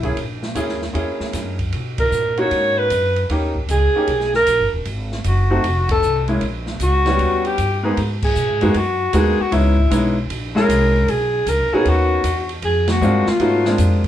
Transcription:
Already playing: upright bass B1, alto saxophone E4
0.03 upright piano A#3 C#4 E4 G#4, kick, ride
0.16 upright bass A#1, kick, ride
0.43 snare
0.55 upright bass D#2, upright piano A#3 C#4 E4 G#4, kick, hi-hat pedal, ride
0.69 snare
0.82 snare
0.93 upright bass E2, upright piano A#3 C#4 E4 G#4, kick, ride
1.20 muted upright bass stroke, snare
1.33 upright bass F#2, kick, snare, hi-hat pedal, ride
1.59 kick, ride
1.73 upright bass B2, kick, ride
1.98 alto saxophone A#4, kick, ride
2.11 upright bass A#2, hi-hat pedal
2.37 upright piano A#3 C#4 D#4 F#4, alto saxophone C#5, ride
2.51 upright bass G#2, kick, ride
2.78 alto saxophone B4
2.90 upright bass F#2, kick, hi-hat pedal, ride
3.16 ride
3.29 upright bass D#2, upright piano A#3 C#4 D#4 G4, kick, ride
3.55 kick
3.69 upright bass C#2, alto saxophone G#4, kick, hi-hat pedal, ride
3.94 upright piano A#3 C#4 D#4 G4, muted upright bass stroke
4.07 upright bass B1, kick, ride
4.21 snare
4.34 alto saxophone A#4, snare
4.46 upright bass A#1, kick, hi-hat pedal, ride
4.59 upright bass G1
4.73 upright bass D#1
4.85 upright bass G#1, kick, ride
5.12 snare
5.24 upright bass F#1, alto saxophone F#4, kick, hi-hat pedal, ride
5.50 upright piano A3 C4 D#4 F#4
5.64 upright bass F1, kick, ride
5.89 alto saxophone A4, kick, ride
6.02 upright bass C2, hi-hat pedal
6.28 upright piano G#3 A#3 C#4 E4, ride
6.41 upright bass A#1, kick, ride
6.66 snare
6.80 upright bass C#2, alto saxophone F#4, kick, hi-hat pedal, ride
7.06 upright piano G3 B3 C#4 F#4, snare, ride
7.19 upright bass D#2, kick, ride
7.45 alto saxophone G4, ride
7.58 upright bass G2, kick, hi-hat pedal, ride
7.83 upright piano G#2 A#3 B3 D#4 G#4
7.97 upright bass G#2, kick, ride
8.22 alto saxophone G#4, kick, crash
8.35 upright bass B2, hi-hat pedal
8.50 upright bass G#2
8.61 upright bass F#2, upright piano G#3 A#3 B3 D#4 F#4, ride
8.74 upright bass F#2, alto saxophone F#4, kick, ride
9.13 upright bass D#2, upright piano G#3 A#3 B3 D#4 F#4, alto saxophone G#4, kick, hi-hat pedal, ride
9.40 alto saxophone F#4, muted upright bass stroke
9.51 upright bass C#2, upright piano G#3 B3 C#4 D#4 E4, alto saxophone E4, kick, ride
9.78 kick
9.91 upright bass B1, upright piano G#3 B3 C#4 D#4 E4, kick, hi-hat pedal, ride
10.30 upright bass A#1, kick, ride
10.55 upright piano G#3 A#3 C#4 E4 G#4, alto saxophone A#4, snare
10.69 upright bass C2, kick, hi-hat pedal, ride
11.08 upright bass B1, alto saxophone G#4, kick, ride
11.46 upright bass C#2, alto saxophone A#4, kick, hi-hat pedal, ride
11.59 upright bass B1
11.72 upright bass A#1, upright piano A#3 B3 C#4 D#4 F#4, alto saxophone G#4
11.85 upright bass D#2, alto saxophone F#4, kick, ride
12.24 upright bass E2, kick, hi-hat pedal, ride
12.49 ride
12.62 upright bass F2, alto saxophone G#4, kick, ride
12.88 alto saxophone F#4, snare, ride
13.01 upright bass G2, upright piano G#3 A#3 C4 D4 F4, hi-hat pedal
13.27 alto saxophone F4, muted upright bass stroke, snare
13.40 upright bass G#2, upright piano A3 B3 C#4 D#4 F#4, kick, ride
13.65 upright piano G#3 A#3 C4 D4 F4, snare
13.78 upright bass F2, kick, hi-hat pedal, ride
14.04 kick, ride

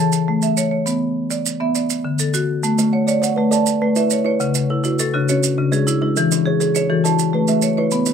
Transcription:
Already playing: marimba A4 C#5
0.00 marimba A5
0.12 maracas
0.28 marimba A3
0.42 marimba E5, maracas
0.57 marimba C#5, maracas
0.71 marimba C#5
0.86 marimba B3, maracas
1.31 marimba D5, maracas
1.46 maracas
1.60 marimba B3 E5
1.75 marimba D5, maracas
1.90 maracas
2.04 marimba D3
2.19 marimba A4, maracas
2.34 marimba F#4, maracas
2.63 marimba A3, maracas
2.78 kalimba A3, maracas
2.93 marimba C#5, kalimba F#5
3.07 marimba C#5, kalimba D5, maracas
3.22 kalimba C#5, marimba F#5, maracas
3.36 marimba A3, kalimba B4
3.51 kalimba A4 D5, marimba A5, maracas
3.66 maracas
3.81 marimba A3, kalimba B4
3.96 kalimba E4 B4, marimba E5, maracas
4.10 marimba C#5, maracas
4.24 kalimba E4 B4, marimba C#5
4.40 marimba C#3, kalimba F#5, maracas
4.55 kalimba C#3, maracas
4.70 marimba E4, kalimba A4
4.84 marimba E4, kalimba F#4, maracas
4.99 kalimba E4, marimba A4, maracas
5.14 marimba C#3 F#4, kalimba D4
5.29 kalimba C#4 F#4, marimba C#5, maracas
5.43 maracas
5.58 marimba C#3, kalimba D4
5.72 kalimba G#3 D4, marimba G#4, maracas
5.87 marimba E4, maracas
6.01 kalimba G#3 D4, marimba E4
6.16 marimba E3, kalimba A4, maracas
6.32 kalimba E3, maracas
6.46 marimba G#4, kalimba C#5
6.60 marimba G#4, kalimba A4, maracas
6.75 kalimba G#4, marimba C#5, maracas
6.90 marimba E3 A4, kalimba F#4
7.04 kalimba E4 A4, marimba A5, maracas
7.19 maracas
7.33 marimba A3, kalimba B4
7.48 kalimba A3, marimba E5, maracas
7.62 marimba C#5, maracas
7.77 kalimba E4 B4, marimba C#5
7.91 marimba B3, maracas
8.06 kalimba B3, maracas

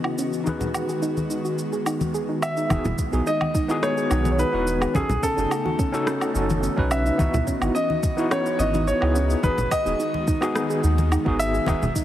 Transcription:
Already playing: tine electric piano C#3 D#4 E4 F#4 G#4 B4, analog synth pad E3 B3 C#4 F#4 D#5
0.04 synth arpeggio sound E4, low woodblock
0.18 synth arpeggio sound C#4, shaker
0.33 shaker
0.44 analog synth pad D#3 G#3, tine electric piano D#4 F#4 G#4, synth arpeggio sound D#4, high conga, shaker
0.49 tine electric piano B4
0.61 synth arpeggio sound F#4, low conga, shaker
0.74 low woodblock, shaker
0.89 synth arpeggio sound G#4, shaker
1.02 synth arpeggio sound D#4, shaker
1.17 high conga, shaker
1.30 synth arpeggio sound D#4, shaker
1.45 synth arpeggio sound F#4, shaker
1.58 shaker
1.73 synth arpeggio sound G#4, shaker
1.86 synth arpeggio sound D#4, low woodblock, shaker
2.01 high conga, shaker
2.14 synth arpeggio sound G#4, shaker
2.29 synth arpeggio sound D#4
2.42 grand piano E5, low woodblock, shaker
2.57 synth arpeggio sound D#4, shaker
2.69 sub bass E1, analog synth pad D#3 G#3 B3, tine electric piano B3 D#4 F#4 G#4, synth arpeggio sound D#4, kick, high conga, low woodblock, shaker
2.85 sub bass E1, synth arpeggio sound E4, low conga, shaker
2.98 kick, shaker
3.12 sub bass B1, tine electric piano B3 D#4 F#4 G#4, synth arpeggio sound G#4, shaker
3.27 synth arpeggio sound D#4, grand piano D#5, shaker
3.41 high conga, low woodblock
3.55 synth arpeggio sound D#4, kick, shaker
3.68 tine electric piano B3 D#4 F#4 G#4, synth arpeggio sound E4, shaker
3.83 grand piano C#5, cross-stick, shaker
3.97 synth arpeggio sound G#4, shaker
4.09 sub bass B1, tine electric piano B3 D#4 F#4 G#4, synth arpeggio sound D#4, low woodblock, shaker
4.25 high conga, shaker
4.32 grand piano C#5
4.39 synth arpeggio sound D#4, grand piano B4, shaker
4.52 sub bass E1, tine electric piano B3 D#4 F#4 B4, synth arpeggio sound E4
4.67 shaker
4.81 synth arpeggio sound G#4, low woodblock, shaker
4.94 sub bass B1, analog synth pad C#3 A3 D#4, tine electric piano C#4 D#4 F#4 A4, synth arpeggio sound C#4, grand piano G#4, kick, high conga, shaker
5.09 sub bass B1, low conga, shaker
5.23 synth arpeggio sound C#4, grand piano A4, kick, shaker
5.36 sub bass F#1, tine electric piano C#4 D#4 F#4 G#4, synth arpeggio sound D#4, shaker
5.51 low woodblock, shaker
5.65 synth arpeggio sound F#4, high conga
5.79 synth arpeggio sound C#4, kick, shaker
5.92 tine electric piano C#4 D#4 F#4 A4, shaker
6.07 synth arpeggio sound C#4, cross-stick, shaker
6.21 synth arpeggio sound D#4, low woodblock, shaker
6.34 sub bass F#1, tine electric piano C#4 D#4 F#4 A4, shaker
6.50 synth arpeggio sound F#4, high conga, shaker
6.63 synth arpeggio sound C#4, shaker
6.76 sub bass B1, tine electric piano C#4 D#4 F#4 B4, kick
6.91 synth arpeggio sound C#4, grand piano E5, low woodblock, shaker
7.06 synth arpeggio sound D#4, shaker
7.18 sub bass C#2, analog synth pad E3 F#4 D#5, tine electric piano B3 D#4 E4 F#4, kick, high conga, shaker
7.34 sub bass C#2, synth arpeggio sound E4, low conga, shaker
7.47 synth arpeggio sound C#4, kick, shaker
7.60 sub bass G#1, tine electric piano B3 D#4 E4 F#4, low woodblock, shaker
7.75 synth arpeggio sound C#4, grand piano D#5, shaker
7.90 synth arpeggio sound D#4, high conga
8.03 kick, shaker
8.17 tine electric piano B3 D#4 E4 F#4, synth arpeggio sound E4, shaker
8.31 synth arpeggio sound C#4, grand piano C#5, cross-stick, low woodblock, shaker
8.46 shaker
8.59 sub bass G#1, tine electric piano B3 D#4 E4 F#4, synth arpeggio sound C#4, grand piano D#5, shaker
8.74 synth arpeggio sound D#4, high conga, shaker
8.87 grand piano C#5, shaker
9.01 sub bass C#2, tine electric piano B3 D#4 E4 G#4, synth arpeggio sound E4, low woodblock
9.15 synth arpeggio sound C#4, shaker
9.30 shaker
9.43 sub bass G#1, analog synth pad D#3 G#3, tine electric piano B3 D#4 F#4 G#4, synth arpeggio sound D#4, grand piano B4, kick, high conga, shaker
9.58 sub bass G#1, synth arpeggio sound F#4, low conga, shaker
9.71 grand piano D#5, kick, low woodblock, shaker
9.85 sub bass D#1, tine electric piano B3 D#4 F#4 G#4, synth arpeggio sound G#4, shaker
10.00 synth arpeggio sound D#4, shaker
10.14 high conga
10.27 synth arpeggio sound D#4, kick, shaker
10.41 tine electric piano B3 D#4 F#4 G#4, synth arpeggio sound F#4, low woodblock, shaker
10.55 cross-stick, shaker
10.70 synth arpeggio sound G#4, shaker
10.84 sub bass D#2, synth arpeggio sound D#4, shaker
10.98 high conga, shaker
11.12 synth arpeggio sound D#4, low woodblock, shaker
11.25 sub bass G#1, tine electric piano B3 D#4 F#4 G#4, synth arpeggio sound F#4, kick
11.39 grand piano E5, shaker
11.54 synth arpeggio sound G#4, shaker
11.66 sub bass E1, tine electric piano B3 D#4 F#4 G#4, synth arpeggio sound D#4, kick, high conga, low woodblock, shaker
11.82 sub bass E1, low conga, shaker
11.96 synth arpeggio sound D#4, kick, shaker

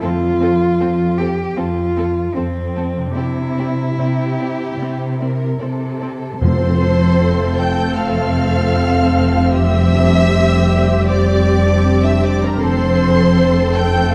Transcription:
Already playing: harp F3 C4 D4 F4 A4
0.01 cello section F2, viola section C4, cello F4, violin section A4 C5
0.41 viola section C4, violin section A4 C5
0.80 cello section F2, viola section C4, violin section A4 C5
1.18 viola section C4, cello G4, violin section A4 C5
1.56 cello section F2, viola section C4, cello F4, violin section A4 C5
1.96 viola section C4, violin section A4 C5
2.34 cello section F2, cello C4, viola section C4, violin section A4 C5
2.74 viola section C4, violin section A4 C5
2.97 harp C3
3.01 harp C4
3.06 harp D4
3.10 cello E4, harp G4
3.15 cello section C3, viola section C4, violin section G4 D5
3.57 viola section C4, violin section G4 D5
3.98 cello section C3, viola section C4, violin section G4 D5
4.38 viola section C4, violin section D5
4.78 cello section C3, viola section C4, violin section D5
5.19 viola section C4, violin section A#4 D5
5.58 cello section C3, viola section C4, violin section A4 D5
6.00 viola section C4, violin section D5
6.41 double bass section F1, timpani F2, cello section F2, harp F3, french horn section A3 C4, viola section C4 A4, violin section C5 C6, flute section C5
6.62 harp C4
6.81 harp F4
7.01 harp A4
7.20 harp C5
7.39 harp F5
7.58 violin section G5 G6, flute section G5, harp A5
7.78 harp C6
7.96 flute section F5, violin section F5 F6, harp A5
8.17 harp F5
8.36 harp C5
8.56 harp F4
8.75 harp C4
8.94 harp F4
9.14 harp C4
9.34 harp F4
9.52 harp F3, french horn section G3, viola section G4, violin section E5 E6, flute section E5
9.73 harp C4
9.93 harp D4
10.12 harp G4
10.31 harp C5
10.50 harp D5
10.69 harp G5
10.88 harp C6
11.07 violin section D5 D6, flute section D5, harp G5
11.26 harp D5
11.45 harp C5
11.65 harp D4
11.85 harp C4
12.04 harp D4, violin section E5 E6, flute section E5
12.23 harp C4, violin section D5 D6, flute section D5
12.43 harp D4, flute section A#4, violin section A#4 A#5
12.61 double bass section F1, cello section F2, harp F3, french horn section A3 C4, viola section C4 A4, violin section C5 C6, flute section C5
12.81 harp C4
13.00 harp F4
13.19 harp A4
13.38 harp C5
13.75 violin section G5 G6, flute section G5, harp A5
13.96 harp C6

